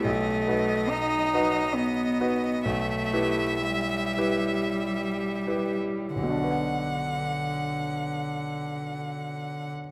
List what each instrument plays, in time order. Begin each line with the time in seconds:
0.04 grand piano B1, cello A3, violin D#5
0.47 grand piano D#4 F#4 B4
0.89 cello D#4
1.33 grand piano D#4 F#4 B4
1.74 cello B3
2.20 grand piano D#4 F#4 B4
2.65 grand piano B1, cello A3, violin E5
3.13 grand piano E4 G4 B4
3.62 cello G3
4.17 grand piano E4 G4 B4
5.47 grand piano E4 G4 B4
6.15 grand piano B1, cello D3, violin F#5
6.23 grand piano B2
6.30 grand piano D4
6.37 grand piano F#4
6.44 grand piano B4
6.51 grand piano F#5